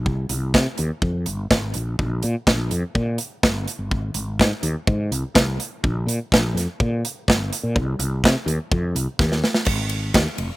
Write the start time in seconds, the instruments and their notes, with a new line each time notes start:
0.06 fretless electric bass C2, kick
0.29 fretless electric bass C2, closed hi-hat
0.54 fretless electric bass C3, kick, snare
0.78 fretless electric bass D#2, closed hi-hat
1.02 fretless electric bass F2, kick
1.26 fretless electric bass G1, closed hi-hat
1.50 fretless electric bass G#1, kick, snare
1.74 fretless electric bass A#1, closed hi-hat
1.99 fretless electric bass A#1, kick
2.23 fretless electric bass A#2, closed hi-hat
2.47 fretless electric bass A#1, kick, snare
2.71 fretless electric bass F2, closed hi-hat
2.95 fretless electric bass A#2, kick
3.18 closed hi-hat
3.43 fretless electric bass G1, kick, snare
3.68 closed hi-hat
3.79 fretless electric bass G1
3.91 fretless electric bass G#1, kick
4.14 fretless electric bass G#1, closed hi-hat
4.39 fretless electric bass G#2, kick, snare
4.63 fretless electric bass D#2, closed hi-hat
4.87 fretless electric bass G#2, kick
5.11 fretless electric bass C2, closed hi-hat
5.35 fretless electric bass C2, kick, snare
5.60 closed hi-hat
5.84 fretless electric bass A#1, kick
6.07 fretless electric bass A#2, closed hi-hat
6.32 fretless electric bass A#1, kick, snare
6.55 fretless electric bass F2, snare, closed hi-hat
6.80 fretless electric bass A#2, kick
7.05 closed hi-hat
7.28 fretless electric bass G1, kick, snare
7.53 closed hi-hat
7.63 fretless electric bass A#2
7.75 fretless electric bass C2, kick
7.99 fretless electric bass C2, closed hi-hat
8.24 fretless electric bass C3, kick, snare
8.46 fretless electric bass D#2, closed hi-hat
8.72 fretless electric bass F2, kick
8.95 fretless electric bass C2, closed hi-hat
9.19 fretless electric bass D#2, kick, snare
9.32 snare
9.44 snare
9.54 snare
9.65 fretless electric bass G#1, kick, crash
9.89 ride
10.14 fretless electric bass D#2, kick, snare, ride
10.38 fretless electric bass F1, ride